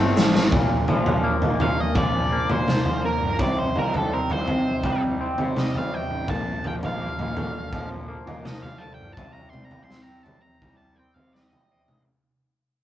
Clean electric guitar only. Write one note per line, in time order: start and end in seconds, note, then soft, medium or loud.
0.00 0.51 F2 medium
0.00 0.52 A3 medium
0.00 0.52 C4 medium
0.16 0.52 F3 medium
0.53 1.60 A#2 medium
0.88 1.96 F3 medium
1.24 2.31 A#3 medium
1.61 3.03 A#2 medium
1.97 2.67 F3 medium
2.32 3.40 A#3 medium
2.68 3.40 F3 medium
3.04 3.40 A#2 medium
3.41 4.48 C3 medium
3.77 4.84 G3 medium
4.13 5.19 C4 medium
4.50 5.92 C3 medium
4.85 5.56 G3 medium
5.21 6.29 C4 medium
5.57 6.29 G3 medium
5.94 6.29 C3 medium
6.29 8.09 A#2 medium
6.65 7.72 F3 medium
7.02 8.07 A#3 medium
7.37 8.80 D3 medium
7.73 8.43 F3 medium
8.08 9.17 A#3 medium
8.45 9.17 F3 medium
8.81 9.17 D3 medium
9.18 10.25 C3 medium
9.54 10.62 G3 medium
9.91 10.98 C4 medium
10.27 11.70 C3 medium
10.63 11.34 G3 medium
10.99 12.07 C4 medium
11.35 12.07 G3 medium
11.71 12.07 C3 medium